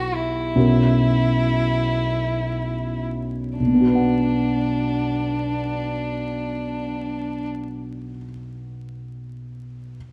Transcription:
0.00 0.51 B1 soft
0.00 0.51 E4 soft
0.00 0.16 F#4 soft
0.00 0.51 G4 soft
0.00 0.52 B4 soft
0.14 3.04 E4 soft
0.55 3.55 B1 soft
0.55 3.55 C#4 soft
0.55 3.55 F#4 soft
0.55 3.55 A#4 soft
3.59 7.97 B1 soft
3.59 7.47 D4 soft
3.67 8.04 B2 soft
3.74 8.11 B3 soft
3.81 8.18 F#4 soft
3.87 8.24 B4 soft
3.95 8.32 F#5 soft

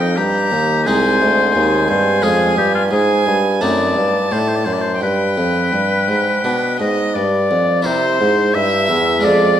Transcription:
0.00 0.14 F2 soft
0.00 0.19 F2 soft
0.00 0.83 D#4 soft
0.00 0.18 D#4 medium
0.00 0.19 G5 soft
0.16 0.53 G2 medium
0.16 0.49 G2 soft
0.16 0.88 G4 medium
0.16 0.87 A#5 medium
0.52 0.83 D#2 soft
0.52 0.88 D#2 medium
0.87 1.18 C2 soft
0.87 1.20 C2 medium
0.87 2.19 G#3 soft
0.87 2.19 C4 soft
0.87 2.19 D#4 soft
0.87 1.89 C5 medium
0.87 1.54 G#5 medium
1.21 1.54 D2 medium
1.21 1.52 D2 soft
1.55 1.88 D#2 medium
1.55 1.86 D#2 soft
1.55 2.89 G#5 medium
1.88 2.19 G2 soft
1.88 2.22 G2 medium
1.88 2.25 C5 medium
2.22 2.53 F2 soft
2.22 2.56 F2 medium
2.22 2.53 G#3 soft
2.22 3.58 C#4 soft
2.22 3.58 F4 soft
2.22 2.57 G#4 medium
2.56 2.88 G2 medium
2.56 2.91 G2 medium
2.56 2.74 G4 medium
2.75 2.82 F4 medium
2.91 3.23 G#2 soft
2.91 3.26 G#2 medium
2.91 3.36 G#4 medium
2.91 3.63 G#5 medium
3.26 3.58 G2 medium
3.26 3.63 G2 medium
3.61 3.93 F#2 medium
3.61 3.96 F#2 medium
3.61 3.93 A3 soft
3.61 3.93 C4 soft
3.61 4.98 D#4 soft
3.61 4.33 D5 medium
3.61 5.02 A5 medium
3.96 4.28 G2 soft
3.96 4.31 G2 medium
4.32 4.63 A2 soft
4.32 4.66 A2 medium
4.32 4.40 C5 soft
4.39 4.49 D5 medium
4.48 4.56 C5 medium
4.55 4.66 D5 soft
4.64 4.98 F#2 soft
4.64 5.03 F#2 medium
4.64 4.74 C5 medium
4.73 4.82 D5 soft
4.81 5.02 C5 medium
5.01 5.33 G2 soft
5.01 5.38 G2 soft
5.01 6.76 B4 medium
5.01 6.76 G5 soft
5.37 5.72 F2 soft
5.37 5.69 F2 soft
5.73 6.05 G2 soft
5.73 6.10 G2 soft
6.08 6.40 G#2 soft
6.08 6.44 G#2 soft
6.44 6.79 B2 soft
6.44 6.76 B2 soft
6.44 7.46 D4 soft
6.79 7.14 G#2 soft
6.79 7.12 G#2 soft
6.79 7.16 D#5 medium
6.79 7.17 D#5 medium
7.14 7.50 G2 medium
7.14 7.47 G2 soft
7.14 7.87 D5 medium
7.14 7.85 D5 soft
7.50 7.85 F2 soft
7.50 7.82 F2 soft
7.82 8.18 C3 medium
7.82 8.17 C3 soft
7.82 9.18 E4 soft
7.82 9.19 A#4 soft
7.82 8.56 C5 medium
7.82 8.53 C5 medium
8.20 8.54 G#2 medium
8.20 8.52 G#2 soft
8.54 8.91 G2 medium
8.54 8.86 G2 soft
8.54 9.26 E5 medium
8.54 9.23 E5 medium
8.89 9.20 E2 soft
8.89 9.24 E2 medium
9.19 9.60 G#3 soft
9.19 9.60 F4 soft
9.19 9.60 G#4 soft
9.24 9.55 F2 soft
9.24 9.58 F2 medium
9.24 9.60 D5 medium

